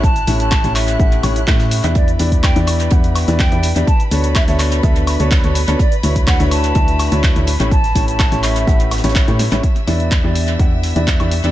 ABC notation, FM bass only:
X:1
M:4/4
L:1/16
Q:1/4=125
K:Edor
V:1 name="FM bass" clef=bass
A,,,2 A,,,3 A,,,3 A,,,2 A,,,2 A,,3 E,,- | E,,2 E,,3 E,,3 E,,3 E,,2 E,,2 E,, | z2 D,,3 D,,3 D,,3 D,,2 D,,2 D,, | z2 D,,3 D,,3 D,,3 D,,2 D,,2 A,,,- |
A,,,2 A,,,3 A,,,3 A,,,3 A,,,2 A,,2 A,,, | z2 E,,3 E,,3 E,,3 E,,2 E,,2 E,, |]